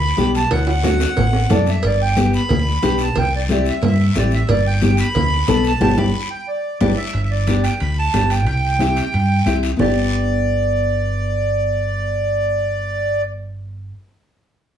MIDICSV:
0, 0, Header, 1, 5, 480
1, 0, Start_track
1, 0, Key_signature, 1, "major"
1, 0, Tempo, 331858
1, 742, Time_signature, 4, 2, 24, 8
1, 21371, End_track
2, 0, Start_track
2, 0, Title_t, "Accordion"
2, 0, Program_c, 0, 21
2, 0, Note_on_c, 0, 83, 111
2, 457, Note_off_c, 0, 83, 0
2, 523, Note_on_c, 0, 81, 100
2, 736, Note_off_c, 0, 81, 0
2, 755, Note_on_c, 0, 78, 101
2, 968, Note_off_c, 0, 78, 0
2, 989, Note_on_c, 0, 78, 102
2, 2208, Note_on_c, 0, 74, 84
2, 2219, Note_off_c, 0, 78, 0
2, 2440, Note_off_c, 0, 74, 0
2, 2457, Note_on_c, 0, 76, 84
2, 2662, Note_off_c, 0, 76, 0
2, 2691, Note_on_c, 0, 74, 93
2, 2898, Note_off_c, 0, 74, 0
2, 2922, Note_on_c, 0, 79, 94
2, 3356, Note_off_c, 0, 79, 0
2, 3398, Note_on_c, 0, 83, 109
2, 4373, Note_on_c, 0, 81, 94
2, 4374, Note_off_c, 0, 83, 0
2, 4578, Note_off_c, 0, 81, 0
2, 4608, Note_on_c, 0, 79, 103
2, 4815, Note_off_c, 0, 79, 0
2, 4856, Note_on_c, 0, 74, 85
2, 4954, Note_off_c, 0, 74, 0
2, 5099, Note_on_c, 0, 74, 76
2, 5300, Note_off_c, 0, 74, 0
2, 5342, Note_on_c, 0, 76, 80
2, 5542, Note_off_c, 0, 76, 0
2, 5580, Note_on_c, 0, 76, 80
2, 6003, Note_off_c, 0, 76, 0
2, 6051, Note_on_c, 0, 74, 89
2, 6255, Note_off_c, 0, 74, 0
2, 6283, Note_on_c, 0, 76, 86
2, 6491, Note_off_c, 0, 76, 0
2, 6509, Note_on_c, 0, 74, 100
2, 6723, Note_off_c, 0, 74, 0
2, 6752, Note_on_c, 0, 79, 95
2, 7187, Note_off_c, 0, 79, 0
2, 7224, Note_on_c, 0, 83, 107
2, 8198, Note_on_c, 0, 81, 94
2, 8203, Note_off_c, 0, 83, 0
2, 8404, Note_off_c, 0, 81, 0
2, 8426, Note_on_c, 0, 81, 100
2, 8640, Note_off_c, 0, 81, 0
2, 8650, Note_on_c, 0, 83, 90
2, 9094, Note_off_c, 0, 83, 0
2, 9120, Note_on_c, 0, 79, 85
2, 9370, Note_off_c, 0, 79, 0
2, 9373, Note_on_c, 0, 74, 70
2, 9813, Note_off_c, 0, 74, 0
2, 9834, Note_on_c, 0, 74, 84
2, 10082, Note_on_c, 0, 76, 95
2, 10086, Note_off_c, 0, 74, 0
2, 10435, Note_off_c, 0, 76, 0
2, 10477, Note_on_c, 0, 76, 67
2, 10571, Note_off_c, 0, 76, 0
2, 10571, Note_on_c, 0, 74, 85
2, 11014, Note_off_c, 0, 74, 0
2, 11046, Note_on_c, 0, 79, 96
2, 11268, Note_off_c, 0, 79, 0
2, 11299, Note_on_c, 0, 83, 96
2, 11539, Note_off_c, 0, 83, 0
2, 11553, Note_on_c, 0, 81, 96
2, 12019, Note_on_c, 0, 79, 90
2, 12032, Note_off_c, 0, 81, 0
2, 12226, Note_off_c, 0, 79, 0
2, 12248, Note_on_c, 0, 79, 101
2, 13870, Note_off_c, 0, 79, 0
2, 14178, Note_on_c, 0, 74, 98
2, 19118, Note_off_c, 0, 74, 0
2, 21371, End_track
3, 0, Start_track
3, 0, Title_t, "Nylon-string guitar"
3, 0, Program_c, 1, 24
3, 245, Note_on_c, 1, 59, 84
3, 255, Note_on_c, 1, 62, 77
3, 261, Note_on_c, 1, 67, 91
3, 589, Note_off_c, 1, 59, 0
3, 594, Note_off_c, 1, 62, 0
3, 597, Note_off_c, 1, 67, 0
3, 1203, Note_on_c, 1, 57, 73
3, 1215, Note_on_c, 1, 62, 67
3, 1219, Note_on_c, 1, 66, 79
3, 1547, Note_off_c, 1, 57, 0
3, 1554, Note_off_c, 1, 62, 0
3, 1554, Note_off_c, 1, 66, 0
3, 2162, Note_on_c, 1, 57, 70
3, 2171, Note_on_c, 1, 62, 63
3, 2179, Note_on_c, 1, 69, 79
3, 2507, Note_off_c, 1, 57, 0
3, 2508, Note_off_c, 1, 62, 0
3, 2515, Note_off_c, 1, 69, 0
3, 3132, Note_on_c, 1, 59, 72
3, 3136, Note_on_c, 1, 62, 67
3, 3146, Note_on_c, 1, 67, 77
3, 3470, Note_off_c, 1, 59, 0
3, 3473, Note_off_c, 1, 62, 0
3, 3474, Note_off_c, 1, 67, 0
3, 4088, Note_on_c, 1, 59, 91
3, 4096, Note_on_c, 1, 62, 81
3, 4098, Note_on_c, 1, 67, 96
3, 4427, Note_off_c, 1, 59, 0
3, 4428, Note_off_c, 1, 62, 0
3, 4432, Note_off_c, 1, 67, 0
3, 5063, Note_on_c, 1, 60, 75
3, 5070, Note_on_c, 1, 64, 70
3, 5076, Note_on_c, 1, 67, 80
3, 5394, Note_off_c, 1, 60, 0
3, 5394, Note_off_c, 1, 64, 0
3, 5400, Note_off_c, 1, 67, 0
3, 6004, Note_on_c, 1, 60, 70
3, 6014, Note_on_c, 1, 64, 64
3, 6023, Note_on_c, 1, 67, 83
3, 6343, Note_off_c, 1, 60, 0
3, 6348, Note_off_c, 1, 64, 0
3, 6353, Note_off_c, 1, 67, 0
3, 6963, Note_on_c, 1, 59, 72
3, 6975, Note_on_c, 1, 62, 70
3, 6975, Note_on_c, 1, 67, 73
3, 7303, Note_off_c, 1, 59, 0
3, 7305, Note_off_c, 1, 62, 0
3, 7307, Note_off_c, 1, 67, 0
3, 7919, Note_on_c, 1, 59, 84
3, 7921, Note_on_c, 1, 62, 76
3, 7929, Note_on_c, 1, 69, 97
3, 8258, Note_off_c, 1, 62, 0
3, 8259, Note_off_c, 1, 59, 0
3, 8263, Note_off_c, 1, 69, 0
3, 8408, Note_on_c, 1, 59, 100
3, 8409, Note_on_c, 1, 62, 101
3, 8412, Note_on_c, 1, 67, 92
3, 8560, Note_off_c, 1, 67, 0
3, 8561, Note_off_c, 1, 62, 0
3, 8562, Note_off_c, 1, 59, 0
3, 8648, Note_on_c, 1, 59, 90
3, 8651, Note_on_c, 1, 67, 96
3, 8653, Note_on_c, 1, 62, 93
3, 8800, Note_off_c, 1, 67, 0
3, 8802, Note_off_c, 1, 59, 0
3, 8804, Note_off_c, 1, 62, 0
3, 9848, Note_on_c, 1, 59, 93
3, 9854, Note_on_c, 1, 62, 89
3, 9855, Note_on_c, 1, 67, 92
3, 10001, Note_off_c, 1, 59, 0
3, 10003, Note_off_c, 1, 62, 0
3, 10004, Note_off_c, 1, 67, 0
3, 10809, Note_on_c, 1, 59, 66
3, 10821, Note_on_c, 1, 62, 62
3, 10825, Note_on_c, 1, 67, 77
3, 11143, Note_off_c, 1, 59, 0
3, 11145, Note_off_c, 1, 62, 0
3, 11150, Note_off_c, 1, 67, 0
3, 11765, Note_on_c, 1, 59, 67
3, 11772, Note_on_c, 1, 62, 62
3, 11782, Note_on_c, 1, 67, 72
3, 12101, Note_off_c, 1, 59, 0
3, 12105, Note_off_c, 1, 62, 0
3, 12107, Note_off_c, 1, 67, 0
3, 12722, Note_on_c, 1, 60, 67
3, 12728, Note_on_c, 1, 64, 62
3, 12736, Note_on_c, 1, 67, 75
3, 13060, Note_off_c, 1, 60, 0
3, 13063, Note_off_c, 1, 64, 0
3, 13067, Note_off_c, 1, 67, 0
3, 13680, Note_on_c, 1, 60, 77
3, 13691, Note_on_c, 1, 64, 73
3, 13694, Note_on_c, 1, 67, 83
3, 14020, Note_off_c, 1, 60, 0
3, 14023, Note_off_c, 1, 64, 0
3, 14026, Note_off_c, 1, 67, 0
3, 14126, Note_on_c, 1, 59, 70
3, 14157, Note_on_c, 1, 62, 65
3, 14187, Note_on_c, 1, 67, 71
3, 20104, Note_off_c, 1, 59, 0
3, 20120, Note_off_c, 1, 62, 0
3, 20134, Note_off_c, 1, 67, 0
3, 21371, End_track
4, 0, Start_track
4, 0, Title_t, "Fingered electric bass"
4, 0, Program_c, 2, 33
4, 0, Note_on_c, 2, 38, 100
4, 167, Note_off_c, 2, 38, 0
4, 261, Note_on_c, 2, 35, 90
4, 645, Note_off_c, 2, 35, 0
4, 748, Note_on_c, 2, 38, 96
4, 1512, Note_off_c, 2, 38, 0
4, 1707, Note_on_c, 2, 33, 96
4, 2088, Note_off_c, 2, 33, 0
4, 2184, Note_on_c, 2, 42, 79
4, 2565, Note_off_c, 2, 42, 0
4, 2662, Note_on_c, 2, 31, 93
4, 3427, Note_off_c, 2, 31, 0
4, 3620, Note_on_c, 2, 38, 107
4, 4001, Note_off_c, 2, 38, 0
4, 4093, Note_on_c, 2, 35, 76
4, 4477, Note_off_c, 2, 35, 0
4, 4582, Note_on_c, 2, 36, 95
4, 5345, Note_off_c, 2, 36, 0
4, 5544, Note_on_c, 2, 43, 102
4, 5923, Note_off_c, 2, 43, 0
4, 6019, Note_on_c, 2, 33, 85
4, 6399, Note_off_c, 2, 33, 0
4, 6492, Note_on_c, 2, 31, 93
4, 7258, Note_off_c, 2, 31, 0
4, 7459, Note_on_c, 2, 38, 104
4, 7838, Note_off_c, 2, 38, 0
4, 7936, Note_on_c, 2, 35, 82
4, 8316, Note_off_c, 2, 35, 0
4, 8415, Note_on_c, 2, 31, 88
4, 8589, Note_off_c, 2, 31, 0
4, 8656, Note_on_c, 2, 31, 101
4, 8830, Note_off_c, 2, 31, 0
4, 9857, Note_on_c, 2, 31, 84
4, 10029, Note_off_c, 2, 31, 0
4, 10332, Note_on_c, 2, 31, 83
4, 11096, Note_off_c, 2, 31, 0
4, 11301, Note_on_c, 2, 38, 83
4, 11678, Note_off_c, 2, 38, 0
4, 11771, Note_on_c, 2, 31, 80
4, 12249, Note_off_c, 2, 31, 0
4, 12249, Note_on_c, 2, 36, 86
4, 13016, Note_off_c, 2, 36, 0
4, 13221, Note_on_c, 2, 43, 90
4, 13599, Note_off_c, 2, 43, 0
4, 13687, Note_on_c, 2, 36, 74
4, 14071, Note_off_c, 2, 36, 0
4, 14171, Note_on_c, 2, 31, 80
4, 20127, Note_off_c, 2, 31, 0
4, 21371, End_track
5, 0, Start_track
5, 0, Title_t, "Drums"
5, 260, Note_on_c, 9, 63, 73
5, 261, Note_on_c, 9, 73, 66
5, 405, Note_off_c, 9, 63, 0
5, 406, Note_off_c, 9, 73, 0
5, 502, Note_on_c, 9, 73, 71
5, 647, Note_off_c, 9, 73, 0
5, 735, Note_on_c, 9, 74, 72
5, 736, Note_on_c, 9, 56, 101
5, 736, Note_on_c, 9, 65, 97
5, 739, Note_on_c, 9, 63, 32
5, 880, Note_off_c, 9, 74, 0
5, 881, Note_off_c, 9, 56, 0
5, 881, Note_off_c, 9, 65, 0
5, 883, Note_off_c, 9, 63, 0
5, 969, Note_on_c, 9, 65, 89
5, 1114, Note_off_c, 9, 65, 0
5, 1210, Note_on_c, 9, 66, 103
5, 1216, Note_on_c, 9, 63, 77
5, 1218, Note_on_c, 9, 73, 72
5, 1355, Note_off_c, 9, 66, 0
5, 1360, Note_off_c, 9, 63, 0
5, 1363, Note_off_c, 9, 73, 0
5, 1448, Note_on_c, 9, 73, 72
5, 1453, Note_on_c, 9, 66, 88
5, 1593, Note_off_c, 9, 73, 0
5, 1598, Note_off_c, 9, 66, 0
5, 1688, Note_on_c, 9, 56, 85
5, 1688, Note_on_c, 9, 66, 76
5, 1689, Note_on_c, 9, 74, 71
5, 1700, Note_on_c, 9, 63, 34
5, 1700, Note_on_c, 9, 64, 82
5, 1833, Note_off_c, 9, 56, 0
5, 1833, Note_off_c, 9, 66, 0
5, 1834, Note_off_c, 9, 74, 0
5, 1844, Note_off_c, 9, 63, 0
5, 1844, Note_off_c, 9, 64, 0
5, 1926, Note_on_c, 9, 66, 105
5, 2071, Note_off_c, 9, 66, 0
5, 2162, Note_on_c, 9, 73, 69
5, 2171, Note_on_c, 9, 66, 101
5, 2180, Note_on_c, 9, 63, 81
5, 2180, Note_on_c, 9, 64, 71
5, 2307, Note_off_c, 9, 73, 0
5, 2316, Note_off_c, 9, 66, 0
5, 2324, Note_off_c, 9, 63, 0
5, 2324, Note_off_c, 9, 64, 0
5, 2406, Note_on_c, 9, 73, 70
5, 2412, Note_on_c, 9, 66, 75
5, 2550, Note_off_c, 9, 73, 0
5, 2557, Note_off_c, 9, 66, 0
5, 2641, Note_on_c, 9, 74, 75
5, 2644, Note_on_c, 9, 56, 107
5, 2658, Note_on_c, 9, 63, 34
5, 2785, Note_off_c, 9, 74, 0
5, 2788, Note_off_c, 9, 56, 0
5, 2802, Note_off_c, 9, 63, 0
5, 3126, Note_on_c, 9, 73, 75
5, 3133, Note_on_c, 9, 63, 77
5, 3270, Note_off_c, 9, 73, 0
5, 3277, Note_off_c, 9, 63, 0
5, 3373, Note_on_c, 9, 73, 73
5, 3518, Note_off_c, 9, 73, 0
5, 3602, Note_on_c, 9, 74, 74
5, 3605, Note_on_c, 9, 56, 91
5, 3623, Note_on_c, 9, 63, 32
5, 3623, Note_on_c, 9, 64, 86
5, 3747, Note_off_c, 9, 74, 0
5, 3749, Note_off_c, 9, 56, 0
5, 3768, Note_off_c, 9, 63, 0
5, 3768, Note_off_c, 9, 64, 0
5, 4085, Note_on_c, 9, 73, 77
5, 4088, Note_on_c, 9, 66, 73
5, 4092, Note_on_c, 9, 63, 72
5, 4230, Note_off_c, 9, 73, 0
5, 4232, Note_off_c, 9, 66, 0
5, 4236, Note_off_c, 9, 63, 0
5, 4312, Note_on_c, 9, 73, 70
5, 4456, Note_off_c, 9, 73, 0
5, 4561, Note_on_c, 9, 74, 74
5, 4564, Note_on_c, 9, 56, 99
5, 4567, Note_on_c, 9, 63, 36
5, 4567, Note_on_c, 9, 64, 73
5, 4706, Note_off_c, 9, 74, 0
5, 4709, Note_off_c, 9, 56, 0
5, 4711, Note_off_c, 9, 63, 0
5, 4711, Note_off_c, 9, 64, 0
5, 5043, Note_on_c, 9, 73, 66
5, 5049, Note_on_c, 9, 63, 72
5, 5188, Note_off_c, 9, 73, 0
5, 5193, Note_off_c, 9, 63, 0
5, 5285, Note_on_c, 9, 73, 71
5, 5430, Note_off_c, 9, 73, 0
5, 5521, Note_on_c, 9, 74, 70
5, 5533, Note_on_c, 9, 56, 84
5, 5535, Note_on_c, 9, 63, 34
5, 5535, Note_on_c, 9, 64, 81
5, 5666, Note_off_c, 9, 74, 0
5, 5678, Note_off_c, 9, 56, 0
5, 5680, Note_off_c, 9, 63, 0
5, 5680, Note_off_c, 9, 64, 0
5, 5999, Note_on_c, 9, 73, 70
5, 6009, Note_on_c, 9, 63, 84
5, 6010, Note_on_c, 9, 66, 68
5, 6144, Note_off_c, 9, 73, 0
5, 6154, Note_off_c, 9, 63, 0
5, 6154, Note_off_c, 9, 66, 0
5, 6233, Note_on_c, 9, 73, 67
5, 6377, Note_off_c, 9, 73, 0
5, 6469, Note_on_c, 9, 74, 69
5, 6490, Note_on_c, 9, 56, 104
5, 6500, Note_on_c, 9, 63, 34
5, 6500, Note_on_c, 9, 64, 69
5, 6614, Note_off_c, 9, 74, 0
5, 6635, Note_off_c, 9, 56, 0
5, 6645, Note_off_c, 9, 63, 0
5, 6645, Note_off_c, 9, 64, 0
5, 6955, Note_on_c, 9, 73, 67
5, 6977, Note_on_c, 9, 63, 76
5, 7099, Note_off_c, 9, 73, 0
5, 7122, Note_off_c, 9, 63, 0
5, 7193, Note_on_c, 9, 73, 71
5, 7337, Note_off_c, 9, 73, 0
5, 7438, Note_on_c, 9, 74, 72
5, 7448, Note_on_c, 9, 56, 90
5, 7459, Note_on_c, 9, 63, 33
5, 7459, Note_on_c, 9, 64, 83
5, 7583, Note_off_c, 9, 74, 0
5, 7592, Note_off_c, 9, 56, 0
5, 7604, Note_off_c, 9, 63, 0
5, 7604, Note_off_c, 9, 64, 0
5, 7915, Note_on_c, 9, 73, 72
5, 7921, Note_on_c, 9, 66, 67
5, 7929, Note_on_c, 9, 63, 74
5, 7929, Note_on_c, 9, 64, 69
5, 8059, Note_off_c, 9, 73, 0
5, 8066, Note_off_c, 9, 66, 0
5, 8074, Note_off_c, 9, 63, 0
5, 8074, Note_off_c, 9, 64, 0
5, 8153, Note_on_c, 9, 73, 71
5, 8298, Note_off_c, 9, 73, 0
5, 8401, Note_on_c, 9, 63, 96
5, 8404, Note_on_c, 9, 74, 98
5, 8408, Note_on_c, 9, 65, 104
5, 8546, Note_off_c, 9, 63, 0
5, 8549, Note_off_c, 9, 74, 0
5, 8553, Note_off_c, 9, 65, 0
5, 8624, Note_on_c, 9, 74, 96
5, 8644, Note_on_c, 9, 65, 94
5, 8647, Note_on_c, 9, 63, 98
5, 8769, Note_off_c, 9, 74, 0
5, 8789, Note_off_c, 9, 65, 0
5, 8792, Note_off_c, 9, 63, 0
5, 9843, Note_on_c, 9, 74, 102
5, 9849, Note_on_c, 9, 63, 92
5, 9849, Note_on_c, 9, 65, 102
5, 9988, Note_off_c, 9, 74, 0
5, 9993, Note_off_c, 9, 63, 0
5, 9993, Note_off_c, 9, 65, 0
5, 10317, Note_on_c, 9, 65, 61
5, 10462, Note_off_c, 9, 65, 0
5, 10802, Note_on_c, 9, 73, 70
5, 10811, Note_on_c, 9, 65, 66
5, 10813, Note_on_c, 9, 63, 74
5, 10947, Note_off_c, 9, 73, 0
5, 10956, Note_off_c, 9, 65, 0
5, 10957, Note_off_c, 9, 63, 0
5, 11049, Note_on_c, 9, 73, 68
5, 11057, Note_on_c, 9, 65, 65
5, 11194, Note_off_c, 9, 73, 0
5, 11201, Note_off_c, 9, 65, 0
5, 11285, Note_on_c, 9, 74, 69
5, 11288, Note_on_c, 9, 65, 70
5, 11429, Note_off_c, 9, 74, 0
5, 11433, Note_off_c, 9, 65, 0
5, 11766, Note_on_c, 9, 73, 72
5, 11772, Note_on_c, 9, 65, 69
5, 11772, Note_on_c, 9, 66, 66
5, 11774, Note_on_c, 9, 63, 72
5, 11911, Note_off_c, 9, 73, 0
5, 11917, Note_off_c, 9, 65, 0
5, 11917, Note_off_c, 9, 66, 0
5, 11918, Note_off_c, 9, 63, 0
5, 12008, Note_on_c, 9, 65, 69
5, 12011, Note_on_c, 9, 73, 69
5, 12152, Note_off_c, 9, 65, 0
5, 12155, Note_off_c, 9, 73, 0
5, 12244, Note_on_c, 9, 65, 68
5, 12251, Note_on_c, 9, 74, 68
5, 12389, Note_off_c, 9, 65, 0
5, 12396, Note_off_c, 9, 74, 0
5, 12717, Note_on_c, 9, 63, 70
5, 12733, Note_on_c, 9, 73, 59
5, 12736, Note_on_c, 9, 65, 63
5, 12862, Note_off_c, 9, 63, 0
5, 12877, Note_off_c, 9, 73, 0
5, 12880, Note_off_c, 9, 65, 0
5, 12966, Note_on_c, 9, 73, 62
5, 12976, Note_on_c, 9, 65, 64
5, 13111, Note_off_c, 9, 73, 0
5, 13121, Note_off_c, 9, 65, 0
5, 13201, Note_on_c, 9, 74, 63
5, 13219, Note_on_c, 9, 65, 62
5, 13345, Note_off_c, 9, 74, 0
5, 13364, Note_off_c, 9, 65, 0
5, 13681, Note_on_c, 9, 63, 70
5, 13686, Note_on_c, 9, 73, 67
5, 13691, Note_on_c, 9, 65, 67
5, 13825, Note_off_c, 9, 63, 0
5, 13830, Note_off_c, 9, 73, 0
5, 13836, Note_off_c, 9, 65, 0
5, 13928, Note_on_c, 9, 73, 61
5, 13932, Note_on_c, 9, 65, 59
5, 14073, Note_off_c, 9, 73, 0
5, 14077, Note_off_c, 9, 65, 0
5, 14163, Note_on_c, 9, 64, 88
5, 14170, Note_on_c, 9, 74, 90
5, 14172, Note_on_c, 9, 66, 82
5, 14308, Note_off_c, 9, 64, 0
5, 14314, Note_off_c, 9, 74, 0
5, 14316, Note_off_c, 9, 66, 0
5, 21371, End_track
0, 0, End_of_file